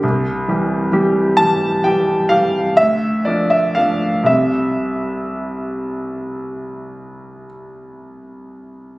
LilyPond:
<<
  \new Staff \with { instrumentName = "Grand piano" } { \time 9/8 \key c \mixolydian \tempo 4. = 39 r4. a''8 g''8 f''8 e''8 d''16 e''16 f''8 | e''2. r4. | }
  \new Staff \with { instrumentName = "Grand piano" } { \clef bass \time 9/8 \key c \mixolydian c,8 <e g g'>8 <e g g'>8 <e g g'>8 <e g g'>8 <e g g'>8 d,8 <f bes d'>8 <f bes d'>8 | <c, g c' g'>1~ <c, g c' g'>8 | }
>>